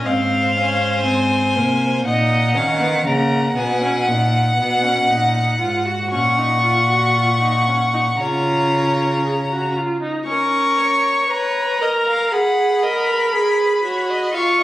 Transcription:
0.05 G#2 C4 C5 F5
0.57 C#4
1.05 G#2 C4 G#5
1.56 C3 A#3
2.06 A#2 D#4 D#5 F#5
2.56 D#3 C#4 F5
2.81 B3
3.05 C#3 A#3 F#5 A#5
3.56 B2 B3 G#5
3.81 C#4
4.06 A#2 D#4 F#5
4.57 B2 B3
4.83 C#4
5.09 A#2 D#4
5.60 G#2 F4
5.86 F#4
6.12 A#2 C#4 F#5 C#6
6.38 D#4
6.64 F4
6.90 F#4
7.15 F4
7.41 D#4
7.68 C#4
7.94 D#4
8.20 C#3 F4 C#5 A#5
9.25 G#4
9.51 F#4
9.77 F4
10.02 D#4
10.27 C#4 A#4 C#6
10.78 C#5
11.30 B4 C#5 A#5
11.81 A#4 D#5
12.06 F5
12.32 G#4 F#5 B5
12.83 A#4 D#5
13.08 B4
13.33 G#4 A#4
13.59 B4
13.84 F#4 C#5
14.10 D#5
14.34 F4 F5 C#6
14.60 D#5

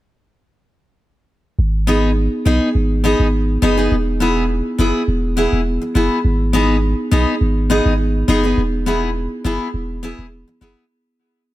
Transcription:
1.59 G#1
1.87 B3 D#4 G#4
2.45 B1 B3 D#4 G#4
2.75 G#1
3.04 B3 D#4 G#4
3.20 G#1
3.62 F#1 B3 D#4 G#4
3.77 B3 D#4 G#4
3.92 E1
4.20 B3 E4 G#4
4.78 F#1 B3 E4 G#4
5.08 E1
5.36 B3 E4 G#4
5.53 E1
5.81 muted steel-string acoustic guitar stroke
5.95 F#1 B3 E4 G#4
6.25 G#1
6.53 B3 D#4 G#4
7.11 B1 B3 D#4 G#4
7.41 G#1
7.70 B3 D#4 G#4
7.86 G#1
8.28 F#1 B3 D#4 G#4
8.43 B3 D#4 G#4
8.58 E1
8.86 B3 E4 G#4
9.44 F#1 B3 E4 G#4
9.74 E1
10.03 B3 E4 G#4
10.19 E1
10.48 muted steel-string acoustic guitar stroke
10.61 F#1 B3 E4 G#4

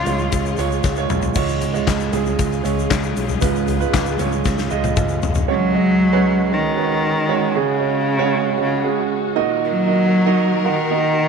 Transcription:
Already playing: G#2 C#3 G#3 F4 G#4 C#5
0.06 C#2 G#3 F4 C#5, closed hi-hat, floor tom, shaker
0.19 shaker
0.32 C#2, kick, closed hi-hat, shaker
0.46 shaker
0.57 C#2 G#3 F4 C#5, closed hi-hat, shaker
0.72 shaker
0.84 C#2, kick, snare, shaker
0.96 G#3 F4 C#5, shaker
1.10 B1, mid tom, shaker
1.22 floor tom, shaker
1.34 C#2 G#2 C#3 G#3 C#4 F4 G#4 C#5, kick, crash, shaker
1.48 shaker
1.61 closed hi-hat, floor tom, shaker
1.74 G#3 F4 C#5, shaker
1.87 C#2, kick, snare, clap, closed hi-hat, shaker
2.00 shaker
2.13 C#2 G#3 F4 G#4, closed hi-hat, floor tom, shaker
2.26 shaker
2.39 C#2, kick, closed hi-hat, shaker
2.53 shaker
2.63 C#2 G#3 F4 C#5, closed hi-hat, shaker
2.79 shaker
2.91 C#2, kick, snare, clap, closed hi-hat, shaker
3.03 shaker
3.16 B1, closed hi-hat, shaker
3.29 floor tom, shaker
3.41 C#2 G#2 G#3 F4 B4, kick, closed hi-hat, shaker
3.56 shaker
3.67 closed hi-hat, floor tom, shaker
3.80 G#3 F4 B4, shaker
3.94 C#2, kick, snare, clap, closed hi-hat, shaker
4.06 shaker
4.19 C#2 G#3 F4 C#5, closed hi-hat, floor tom, shaker
4.32 shaker
4.45 C#2, kick, snare, shaker
4.58 snare, shaker
4.70 C#2 G#3 F4 D#5, shaker
4.84 high tom, shaker
4.97 C#2, kick, mid tom, shaker
5.09 shaker
5.22 F1, floor tom, shaker
5.35 floor tom, shaker
5.48 C#3 F#3 G#3 C#4 F#4 C#5
5.74 G#3 C#4 F#4 D#5
6.13 G#3 C#4 F#4 B4
6.51 D#3 G#3 C#4 F#4 C#5
6.77 G#3 C#4 F#4 B4
7.29 G#3 C#4 F#4 C#5
7.55 C#3 G#3 C#4 F#4 G#4
7.80 G#3 C#4 F#4 C#5
8.18 G#3 C#4 F#4 C#5
8.58 C#3 G#3 C#4 F#4 C#5
8.84 G#3 C#4 F#4 G#4
9.36 A#2 D#3 A#3 D#4 F#4 A#4 D#5
9.65 F#3
9.87 A#3 D#4 F#4 D#5
10.26 A#3 D#4 F#4 D#5
10.65 D#3 A#3 D#4 F#4 F#5
10.90 A#3 D#4 F#4 D#5

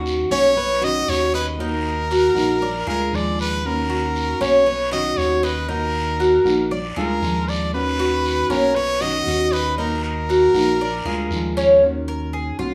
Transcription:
Already playing: D#2 D#3 A#3 C#4 F#4
0.06 short guiro
0.31 B1 A#3 C#4 F#4 C#5, short guiro
0.56 B4, muted nylon-string guitar stroke, long guiro
0.81 D#3 C#4 F#4 D#5
1.08 D#2 B2 D#3 C#4 F#4 C#5, short guiro
1.34 B4 D#5, short guiro
1.58 D#3 A#3 D#4 F#4 A#4, long guiro
2.11 F#4, short guiro
2.35 A#1 A#3 D#4 F#4, short guiro
2.62 D5, muted nylon-string guitar stroke, long guiro
2.87 D2 G#3 D4 F4 G#4 A#4
3.12 D#2 F3 G#3 D4 F4 D5, short guiro
3.39 B4, short guiro
3.64 D#3 A#3 C#4 F#4 A#4, long guiro
3.90 F#4
4.16 short guiro
4.40 B1 A#3 C#4 F#4 C#5, short guiro
4.66 B4, muted nylon-string guitar stroke, long guiro
4.91 D#3 C#4 F#4 D#5
5.17 D#2 B2 D#3 C#4 F#4 C#5, short guiro
5.43 B4 D#5, short guiro
5.68 D#3 A#3 D#4 F#4 A#4, long guiro
6.20 F#4, short guiro
6.45 A#1 A#3 D#4 F#4, short guiro
6.71 D5, muted nylon-string guitar stroke, long guiro
6.96 D2 G#3 D4 F4 G#4 A#4
7.22 D#2 F3 G#3 D4 F4, short guiro
7.48 D5, short guiro
7.73 D#3 C#4 F#4 B4, long guiro
7.99 F#4
8.25 short guiro
8.49 B1 A#3 C#4 F#4 A#4, short guiro
8.75 B4 C#5, muted nylon-string guitar stroke, long guiro
9.01 D#3 C#4 F#4 D#5
9.26 D#2 B2 D#3 C#4 F#4, short guiro
9.52 B4 D#5, short guiro
9.77 D#3 A#3 D#4 F#4 A#4, long guiro
10.04 A#4
10.29 F#4, short guiro
10.54 A#1 A#3 D#4 F#4, short guiro
10.80 D5, muted nylon-string guitar stroke, long guiro
11.05 D2 G#3 D4 F4 G#4
11.30 D#2 F3 G#3 D4 F4, short guiro
11.57 C#4, short guiro
11.82 D#3 A#3 C#4 F#4
12.08 A#4
12.33 G#4
12.59 B1 A#3 C#4 F4 F#4

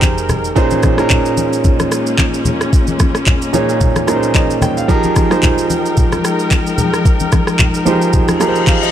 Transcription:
Already playing: F1 F3 G#3 D#4 G4 G#4 A#4 C5 G5
0.02 kick, clap, high conga, shaker
0.18 shaker
0.29 cross-stick, high conga, low conga, shaker
0.44 shaker
0.56 A#2 G#3 A#3 C#4 D#4 G#4 C5, kick, shaker
0.70 high conga, shaker
0.83 kick, cross-stick, high conga, shaker
0.97 A#2 C#4 D#4 G#4 A#4, cross-stick, shaker
1.10 kick, clap, low conga, shaker
1.25 shaker
1.37 high conga, shaker
1.53 shaker
1.64 kick, low conga, shaker
1.79 cross-stick, high conga, shaker
1.92 cross-stick, shaker
2.07 shaker
2.18 kick, clap, high conga, shaker
2.34 shaker
2.45 high conga, low conga, shaker
2.61 cross-stick, shaker
2.73 kick, shaker
2.87 high conga, shaker
2.99 kick, cross-stick, high conga, shaker
3.15 cross-stick, shaker
3.26 kick, clap, low conga, shaker
3.42 shaker
3.53 A#2 C#4 D#4 G#4 C#5, high conga, shaker
3.69 shaker
3.81 kick, low conga, shaker
3.96 cross-stick, high conga, shaker
4.07 A#2 C#4 D#4 G#4 A#4, cross-stick, shaker
4.16 C5
4.23 shaker
4.35 D#5, kick, clap, high conga, shaker
4.50 shaker
4.62 G5, cross-stick, high conga, low conga, shaker
4.77 F5, shaker
4.88 F3 G#3 D#4 G4 G#4 A#4 G5, kick, shaker
5.03 high conga, shaker
5.16 kick, cross-stick, high conga, shaker
5.30 F3 D#4 G4 G#4 C5, cross-stick, shaker
5.43 kick, clap, low conga, shaker
5.58 shaker
5.70 high conga, shaker
5.86 shaker
5.97 kick, low conga, shaker
6.12 cross-stick, high conga, shaker
6.24 cross-stick, shaker
6.39 shaker
6.51 kick, clap, high conga, shaker
6.67 shaker
6.78 high conga, low conga, shaker
6.94 cross-stick, shaker
7.05 kick, shaker
7.20 high conga, shaker
7.32 kick, cross-stick, high conga, shaker
7.47 cross-stick, shaker
7.59 kick, clap, low conga, shaker
7.74 shaker
7.85 F3 D#4 G4 G#4 C5, high conga, shaker
8.02 shaker
8.13 kick, reverse cymbal, low conga, shaker
8.28 cross-stick, high conga, shaker
8.40 F3 D#4 G4 G#4 A#4, cross-stick, shaker
8.48 C5
8.55 shaker
8.67 F5, kick, clap, high conga, shaker
8.83 D#5, shaker

